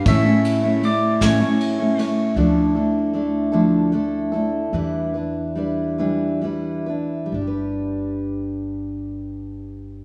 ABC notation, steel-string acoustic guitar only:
X:1
M:6/8
L:1/16
Q:3/8=49
K:Ddor
V:1 name="Steel-string acoustic guitar"
[A,,E,A,^CE^c] [A,CEc]2 [A,CEc] [A,E]2 [A,,E,A,CEc] [A,CEc]2 [A,CEc] [A,CEc]2 | [D,F,A,DEA]2 [A,DEA]2 [A,DEA]2 [D,F,A,DEA]2 [A,DEA]2 [A,DEA]2 | [E,G,DEB]2 [DEB]2 [G,DEB]2 [E,G,DEB]2 [G,DEB]2 [DEB]2 | [G,DGB]12 |]